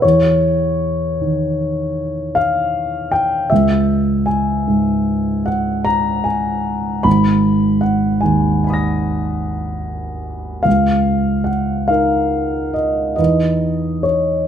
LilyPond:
<<
  \new Staff \with { instrumentName = "Grand piano" } { \time 9/8 \key cis \dorian \tempo 4. = 50 << { r1 r8 | r1 r8 | r2 <gis'' b'' dis''' ais'''>2~ <gis'' b'' dis''' ais'''>8 | r1 r8 | } \\ { cis''2. eis''4 g''8 | e''4 gis''4. fis''8 ais''8 gis''4 | b''4 fis''8 gis''4. r4. | eis''4 fis''8 eis''4 dis''8 dis''4 cis''8 | } >> }
  \new Staff \with { instrumentName = "Grand piano" } { \clef bass \time 9/8 \key cis \dorian e,4. dis2. | cis,4. gis,2. | gis,,4. dis,2. | cis,4. <dis' ais'>4. <e, dis' b'>4. | }
>>